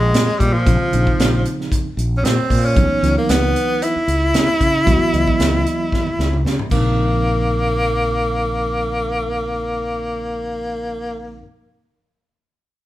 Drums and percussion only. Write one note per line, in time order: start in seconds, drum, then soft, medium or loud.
0.14 snare medium
0.14 closed hi-hat medium
0.40 kick medium
0.40 closed hi-hat soft
0.67 kick loud
0.67 closed hi-hat medium
0.93 closed hi-hat medium
1.07 kick medium
1.20 snare loud
1.20 closed hi-hat medium
1.45 closed hi-hat medium
1.61 snare soft
1.72 kick medium
1.72 closed hi-hat medium
1.99 closed hi-hat medium
2.25 snare loud
2.25 closed hi-hat medium
2.50 kick medium
2.50 open hi-hat medium
2.77 kick medium
2.77 closed hi-hat medium
3.04 snare soft
3.04 closed hi-hat medium
3.29 snare loud
3.29 closed hi-hat medium
3.56 closed hi-hat medium
3.82 closed hi-hat medium
4.08 closed hi-hat medium
4.34 snare medium
4.34 closed hi-hat medium
4.61 kick medium
4.61 closed hi-hat soft
4.87 kick medium
4.87 closed hi-hat medium
5.14 closed hi-hat soft
5.27 kick medium
5.40 snare medium
5.40 closed hi-hat medium
5.66 closed hi-hat soft
5.92 kick medium
5.92 snare soft
6.07 high tom soft
6.20 snare medium
6.33 mid tom medium
6.46 snare medium
6.59 mid tom medium
6.71 kick medium
6.71 crash medium